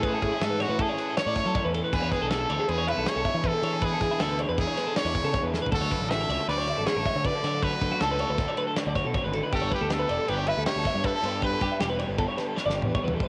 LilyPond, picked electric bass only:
\new Staff \with { instrumentName = "Picked electric bass" } { \clef bass \time 5/4 \key d \lydian \tempo 4 = 158 a,8 a,16 r16 gis,8. a,8 r4 a,8 fis16 r16 e,8 r16 | e,16 e,16 r16 b,,8. d,16 r16 e,8. b,,16 r16 b,,16 r16 e8 r16 e8~ | e8 e16 r16 d,8. e,8 r4 e,8 cis16 r16 e,8 r16 | d,16 d,16 r16 a,,8. cis,16 r16 d,8. a,,16 r16 a,,16 r16 d8 r16 d8~ |
d8 d16 r16 cis,8. d,8 r4 d,8 b,16 r16 gis,,8 r16 | g,,16 g,,16 r16 d,8. e,,16 r16 g,,8. d,16 r16 d,16 r16 g,8 r16 g,8~ | g,8 g,16 r16 e,,8. g,,8 r4 g,,8 e,16 r16 e,8 r16 | }